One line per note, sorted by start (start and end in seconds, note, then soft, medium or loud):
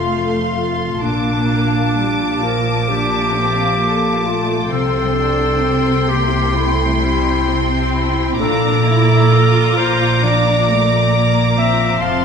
0.00 1.03 F1 soft
0.00 1.04 F2 soft
0.00 1.07 F2 soft
0.00 1.08 C3 soft
0.00 1.03 A3 soft
0.00 1.08 C4 soft
0.00 0.39 F4 medium
0.00 0.73 F4 soft
0.00 0.11 C5 soft
0.00 0.42 F5 soft
0.00 1.00 F5 soft
0.00 1.00 C6 soft
0.12 1.07 C5 soft
0.43 1.66 F5 soft
0.56 1.03 F4 medium
0.74 2.59 F4 soft
1.02 4.66 A#1 soft
1.02 4.67 A#2 soft
1.02 4.75 A#2 soft
1.02 1.97 A#3 soft
1.02 2.45 D4 medium
1.02 4.68 A5 soft
1.02 4.71 D6 soft
1.35 4.75 A#3 soft
1.67 2.29 F5 soft
1.98 2.43 G3 soft
1.98 4.75 A5 soft
2.30 3.51 F5 soft
2.43 2.90 F3 soft
2.43 2.90 A#4 medium
2.60 4.41 F4 soft
2.89 4.75 F3 soft
2.89 3.35 D4 soft
2.89 4.27 G4 medium
3.21 4.75 A3 soft
3.36 3.81 C4 soft
3.52 4.11 F5 soft
3.81 4.25 A#3 soft
3.81 4.75 A4 soft
4.12 4.75 F5 soft
4.26 4.71 A3 soft
4.26 4.71 F4 medium
4.43 4.75 F4 soft
4.71 8.36 C2 soft
4.71 8.36 C3 medium
4.71 8.44 C3 soft
4.71 5.17 C4 soft
4.71 6.10 A4 medium
4.71 8.40 G5 soft
4.71 8.41 C6 soft
5.02 6.85 G3 soft
5.17 5.62 D4 soft
5.33 5.93 C5 soft
5.63 6.10 C4 medium
5.63 7.44 G4 soft
5.94 7.15 C5 soft
6.09 6.55 A#3 soft
6.09 6.57 G4 medium
6.26 8.08 E4 soft
6.55 7.01 A3 medium
6.55 8.45 C4 soft
6.55 7.76 E4 medium
6.86 8.44 G3 soft
7.02 7.46 G3 soft
7.16 7.75 C5 soft
7.46 8.40 C4 medium
7.46 8.44 G4 soft
7.76 8.44 C5 soft
7.93 8.42 E4 medium
8.09 8.44 E4 soft
8.39 11.99 A#1 medium
8.39 11.99 A#2 medium
8.39 12.07 A#2 medium
8.39 8.86 D4 medium
8.39 9.79 A4 medium
8.39 11.99 A#5 medium
8.39 11.99 D6 soft
8.72 10.52 A#3 soft
8.86 9.32 E4 medium
9.02 9.61 D5 soft
9.33 10.23 F4 medium
9.63 10.82 D5 soft
9.77 10.25 C5 medium
9.93 11.72 F4 soft
10.23 12.25 F3 soft
10.23 10.68 D4 medium
10.23 11.57 D5 medium
10.53 12.06 A#3 soft
10.68 11.13 A3 soft
10.83 11.42 D5 soft
11.13 11.58 A#3 medium
11.13 12.06 A#4 soft
11.43 12.06 D5 soft
11.57 12.02 C4 medium
11.57 12.03 E5 medium
11.73 12.25 F4 soft
12.02 12.25 F1 medium
12.02 12.25 F2 medium
12.02 12.25 C4 medium
12.02 12.25 F5 medium
12.02 12.25 A5 medium
12.02 12.25 C6 medium